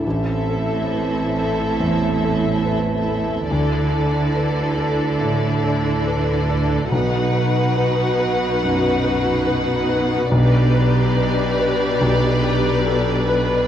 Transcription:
X:1
M:4/4
L:1/8
Q:1/4=70
K:Ador
V:1 name="Violin section"
[Ae]8 | [Ad]8 | [Bf]8 | [Bd]8 |]
V:2 name="Grand piano"
A,,, A B A E,, A B A | D,, A B A A,, A B A | B,,, B B B F,, B B B | B,,, B B B B,,, G A B |]
V:3 name="Viola section"
[CE]8 | [DE]8 | [^DF]8 | [DG]8 |]
V:4 name="Cello section" clef=bass
A,,8 | D,8 | B,,8 | B,,8 |]
V:5 name="Double bass section" clef=bass
A,,,8 | D,,8 | B,,,8 | B,,,8 |]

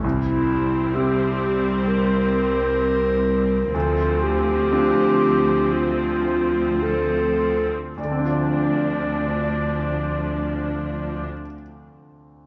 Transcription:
X:1
M:4/4
L:1/8
Q:1/4=58
K:Dm
V:1 name="Clarinet"
E2 G2 B4 | A G3 F2 A2 | d8 |]
V:2 name="Grand piano"
C,,2 [CEG]6 | D,,2 [CDF]6 | [D,,D,CDFd]8 |]
V:3 name="Viola section"
[G,C]8 | [F,C]8 | [F,D]8 |]
V:4 name="Cello section" clef=bass
C,,8 | D,,8 | D,,8 |]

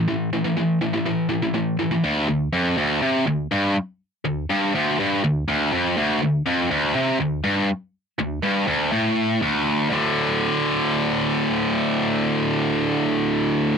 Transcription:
X:1
M:4/4
L:1/16
Q:1/4=122
K:Dm
V:1 name="Distorted electric guitar" clef=bass
[A,,E,]2 [A,,E,] [A,,E,] [A,,E,]2 [A,,E,] [A,,E,] [A,,E,]2 [A,,E,] [A,,E,] [A,,E,]2 [A,,E,] [A,,E,] | D,,2 D,,2 F,,2 D,,2 C,2 D,,2 G,,2 z2 | z2 D,,2 G,,2 D,,2 G,,2 D,,2 D,,2 F,,2 | D,,2 D,,2 F,,2 D,,2 C,2 D,,2 G,,2 z2 |
z2 D,,2 G,,2 D,,2 A,,4 D,,4 | [D,,A,,D,]16- | [D,,A,,D,]16 |]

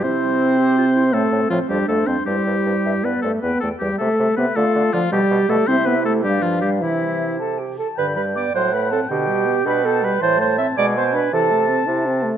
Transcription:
X:1
M:6/8
L:1/16
Q:3/8=107
K:C
V:1 name="Flute"
C12 | c2 c2 c2 c2 c2 c2 | c2 c2 c2 e2 d2 c2 | g2 g2 g2 e2 e2 e2 |
f2 f2 f2 d2 d2 d2 | e6 f6 | e6 a2 g2 a2 | [K:G] b2 b2 d'2 c'2 b2 a2 |
g6 b2 a2 b2 | c'2 c'2 e'2 d'2 c'2 b2 | a6 z6 |]
V:2 name="Clarinet"
E6 G2 F2 E2 | C6 D6 | E8- E z3 | z6 A6 |
F6 G6 | E6 D6 | E6 A2 G2 A2 | [K:G] B2 B2 d2 c2 B2 A2 |
G6 B2 A2 B2 | c2 c2 e2 d2 c2 B2 | A6 z6 |]
V:3 name="Oboe"
c12 | A4 F2 G2 A2 c2 | G8 B2 A2 | B2 A2 G2 A4 B2 |
A4 F2 G4 A2 | c2 B2 A2 G2 F2 G2 | E6 z6 | [K:G] g6 f6 |
g12 | a6 ^g6 | a12 |]
V:4 name="French horn"
C12 | A,4 F,2 G,2 A,2 C2 | G,8 B,2 A,2 | B,2 A,2 G,2 A,4 B,2 |
A,4 F,2 G,4 A,2 | C2 B,2 A,2 G,2 F,2 G,2 | E,6 z6 | [K:G] D,2 G,2 B,2 F,2 A,2 C2 |
D,2 G,2 B,2 D2 B,2 G,2 | E,2 A,2 C2 ^G,2 B,2 D2 | E,2 A,2 C2 E2 C2 A,2 |]
V:5 name="Bassoon" clef=bass
C,12 | A,,2 A,,2 A,,2 F,,2 F,,2 F,,2 | G,,2 G,,2 G,,2 G,,2 G,,2 G,,2 | E,,2 E,,2 E,,2 C,2 C,2 C,2 |
D,2 D,2 D,2 B,,2 B,,2 B,,2 | C,6 G,,6 | C,8- C,2 z2 | [K:G] G,,6 A,,6 |
B,,6 B,,6 | A,,6 B,,6 | C,6 C,6 |]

